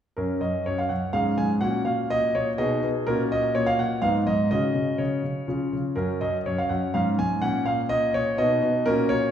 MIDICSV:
0, 0, Header, 1, 2, 480
1, 0, Start_track
1, 0, Key_signature, 6, "major"
1, 0, Tempo, 482315
1, 174, Time_signature, 3, 2, 24, 8
1, 9267, End_track
2, 0, Start_track
2, 0, Title_t, "Grand piano"
2, 0, Program_c, 0, 0
2, 165, Note_on_c, 0, 70, 63
2, 173, Note_on_c, 0, 42, 53
2, 177, Note_on_c, 0, 61, 38
2, 387, Note_off_c, 0, 70, 0
2, 396, Note_off_c, 0, 42, 0
2, 406, Note_on_c, 0, 75, 62
2, 411, Note_on_c, 0, 42, 45
2, 627, Note_off_c, 0, 75, 0
2, 647, Note_off_c, 0, 42, 0
2, 657, Note_on_c, 0, 73, 69
2, 667, Note_on_c, 0, 42, 48
2, 777, Note_off_c, 0, 73, 0
2, 782, Note_on_c, 0, 77, 65
2, 880, Note_off_c, 0, 42, 0
2, 886, Note_on_c, 0, 78, 61
2, 895, Note_on_c, 0, 42, 43
2, 899, Note_off_c, 0, 77, 0
2, 1098, Note_off_c, 0, 61, 0
2, 1125, Note_on_c, 0, 77, 77
2, 1127, Note_on_c, 0, 61, 37
2, 1128, Note_off_c, 0, 42, 0
2, 1130, Note_on_c, 0, 44, 54
2, 1130, Note_on_c, 0, 68, 38
2, 1131, Note_off_c, 0, 78, 0
2, 1359, Note_off_c, 0, 44, 0
2, 1370, Note_on_c, 0, 80, 76
2, 1371, Note_off_c, 0, 77, 0
2, 1374, Note_on_c, 0, 44, 54
2, 1516, Note_off_c, 0, 80, 0
2, 1578, Note_off_c, 0, 61, 0
2, 1580, Note_off_c, 0, 68, 0
2, 1599, Note_on_c, 0, 78, 80
2, 1605, Note_on_c, 0, 61, 43
2, 1606, Note_on_c, 0, 46, 60
2, 1608, Note_off_c, 0, 44, 0
2, 1608, Note_on_c, 0, 66, 46
2, 1823, Note_off_c, 0, 78, 0
2, 1833, Note_off_c, 0, 46, 0
2, 1841, Note_on_c, 0, 77, 67
2, 1848, Note_on_c, 0, 46, 47
2, 2085, Note_off_c, 0, 46, 0
2, 2088, Note_off_c, 0, 77, 0
2, 2094, Note_on_c, 0, 75, 93
2, 2100, Note_on_c, 0, 46, 59
2, 2329, Note_off_c, 0, 46, 0
2, 2335, Note_off_c, 0, 75, 0
2, 2337, Note_on_c, 0, 73, 76
2, 2344, Note_on_c, 0, 46, 49
2, 2481, Note_off_c, 0, 73, 0
2, 2530, Note_off_c, 0, 61, 0
2, 2531, Note_off_c, 0, 66, 0
2, 2570, Note_on_c, 0, 75, 85
2, 2571, Note_on_c, 0, 63, 50
2, 2572, Note_off_c, 0, 46, 0
2, 2572, Note_on_c, 0, 47, 70
2, 2573, Note_on_c, 0, 68, 52
2, 2804, Note_off_c, 0, 47, 0
2, 2819, Note_on_c, 0, 47, 59
2, 2858, Note_off_c, 0, 75, 0
2, 3016, Note_off_c, 0, 63, 0
2, 3018, Note_off_c, 0, 68, 0
2, 3048, Note_off_c, 0, 47, 0
2, 3051, Note_on_c, 0, 70, 87
2, 3057, Note_on_c, 0, 61, 46
2, 3057, Note_on_c, 0, 66, 49
2, 3061, Note_on_c, 0, 46, 70
2, 3194, Note_off_c, 0, 70, 0
2, 3288, Note_off_c, 0, 46, 0
2, 3302, Note_on_c, 0, 75, 87
2, 3309, Note_on_c, 0, 46, 56
2, 3511, Note_off_c, 0, 75, 0
2, 3524, Note_off_c, 0, 46, 0
2, 3530, Note_on_c, 0, 73, 82
2, 3538, Note_on_c, 0, 46, 63
2, 3647, Note_on_c, 0, 77, 87
2, 3648, Note_off_c, 0, 73, 0
2, 3762, Note_off_c, 0, 46, 0
2, 3766, Note_off_c, 0, 77, 0
2, 3772, Note_on_c, 0, 78, 74
2, 3777, Note_on_c, 0, 46, 50
2, 3967, Note_off_c, 0, 66, 0
2, 3968, Note_off_c, 0, 61, 0
2, 3984, Note_off_c, 0, 78, 0
2, 3998, Note_on_c, 0, 77, 86
2, 4002, Note_on_c, 0, 44, 60
2, 4003, Note_off_c, 0, 46, 0
2, 4003, Note_on_c, 0, 59, 47
2, 4003, Note_on_c, 0, 63, 44
2, 4144, Note_off_c, 0, 77, 0
2, 4235, Note_off_c, 0, 44, 0
2, 4246, Note_on_c, 0, 75, 78
2, 4250, Note_on_c, 0, 44, 52
2, 4453, Note_off_c, 0, 59, 0
2, 4453, Note_off_c, 0, 63, 0
2, 4464, Note_off_c, 0, 75, 0
2, 4483, Note_off_c, 0, 44, 0
2, 4486, Note_on_c, 0, 75, 85
2, 4489, Note_on_c, 0, 61, 39
2, 4490, Note_on_c, 0, 49, 59
2, 4496, Note_on_c, 0, 66, 41
2, 4704, Note_off_c, 0, 49, 0
2, 4719, Note_on_c, 0, 49, 46
2, 4944, Note_off_c, 0, 49, 0
2, 4959, Note_on_c, 0, 49, 53
2, 4959, Note_on_c, 0, 73, 62
2, 4974, Note_off_c, 0, 75, 0
2, 5194, Note_off_c, 0, 49, 0
2, 5209, Note_on_c, 0, 49, 42
2, 5424, Note_off_c, 0, 61, 0
2, 5428, Note_off_c, 0, 66, 0
2, 5437, Note_off_c, 0, 49, 0
2, 5449, Note_on_c, 0, 61, 34
2, 5449, Note_on_c, 0, 65, 37
2, 5452, Note_on_c, 0, 49, 49
2, 5685, Note_off_c, 0, 49, 0
2, 5700, Note_on_c, 0, 49, 42
2, 5701, Note_off_c, 0, 73, 0
2, 5910, Note_off_c, 0, 61, 0
2, 5910, Note_off_c, 0, 65, 0
2, 5927, Note_on_c, 0, 70, 69
2, 5931, Note_on_c, 0, 61, 42
2, 5935, Note_on_c, 0, 66, 39
2, 5936, Note_on_c, 0, 42, 59
2, 5940, Note_off_c, 0, 49, 0
2, 6172, Note_off_c, 0, 42, 0
2, 6179, Note_on_c, 0, 75, 70
2, 6182, Note_off_c, 0, 70, 0
2, 6187, Note_on_c, 0, 42, 49
2, 6329, Note_off_c, 0, 75, 0
2, 6422, Note_off_c, 0, 42, 0
2, 6429, Note_on_c, 0, 73, 74
2, 6437, Note_on_c, 0, 42, 52
2, 6553, Note_off_c, 0, 73, 0
2, 6553, Note_on_c, 0, 77, 72
2, 6655, Note_off_c, 0, 42, 0
2, 6661, Note_on_c, 0, 78, 62
2, 6670, Note_on_c, 0, 42, 49
2, 6675, Note_off_c, 0, 77, 0
2, 6866, Note_off_c, 0, 61, 0
2, 6868, Note_off_c, 0, 66, 0
2, 6906, Note_off_c, 0, 42, 0
2, 6906, Note_on_c, 0, 77, 77
2, 6909, Note_off_c, 0, 78, 0
2, 6911, Note_on_c, 0, 61, 44
2, 6913, Note_on_c, 0, 44, 61
2, 7053, Note_off_c, 0, 77, 0
2, 7139, Note_off_c, 0, 44, 0
2, 7153, Note_on_c, 0, 80, 85
2, 7154, Note_on_c, 0, 44, 53
2, 7359, Note_off_c, 0, 61, 0
2, 7380, Note_on_c, 0, 78, 89
2, 7385, Note_on_c, 0, 46, 61
2, 7387, Note_off_c, 0, 44, 0
2, 7389, Note_on_c, 0, 61, 44
2, 7394, Note_off_c, 0, 80, 0
2, 7602, Note_off_c, 0, 78, 0
2, 7609, Note_off_c, 0, 46, 0
2, 7619, Note_on_c, 0, 77, 79
2, 7624, Note_on_c, 0, 46, 52
2, 7767, Note_off_c, 0, 77, 0
2, 7854, Note_off_c, 0, 46, 0
2, 7856, Note_on_c, 0, 75, 92
2, 7868, Note_on_c, 0, 46, 60
2, 8078, Note_off_c, 0, 75, 0
2, 8096, Note_off_c, 0, 46, 0
2, 8103, Note_on_c, 0, 73, 87
2, 8111, Note_on_c, 0, 46, 55
2, 8305, Note_off_c, 0, 61, 0
2, 8341, Note_off_c, 0, 46, 0
2, 8342, Note_on_c, 0, 59, 49
2, 8343, Note_on_c, 0, 75, 89
2, 8344, Note_off_c, 0, 73, 0
2, 8345, Note_on_c, 0, 47, 74
2, 8350, Note_on_c, 0, 63, 47
2, 8568, Note_off_c, 0, 47, 0
2, 8583, Note_on_c, 0, 47, 66
2, 8782, Note_off_c, 0, 59, 0
2, 8786, Note_off_c, 0, 63, 0
2, 8811, Note_off_c, 0, 47, 0
2, 8813, Note_on_c, 0, 66, 53
2, 8814, Note_on_c, 0, 70, 97
2, 8815, Note_off_c, 0, 75, 0
2, 8819, Note_on_c, 0, 46, 70
2, 8820, Note_on_c, 0, 61, 56
2, 9038, Note_off_c, 0, 46, 0
2, 9046, Note_on_c, 0, 73, 88
2, 9052, Note_off_c, 0, 70, 0
2, 9053, Note_on_c, 0, 46, 62
2, 9256, Note_off_c, 0, 66, 0
2, 9260, Note_off_c, 0, 61, 0
2, 9267, Note_off_c, 0, 46, 0
2, 9267, Note_off_c, 0, 73, 0
2, 9267, End_track
0, 0, End_of_file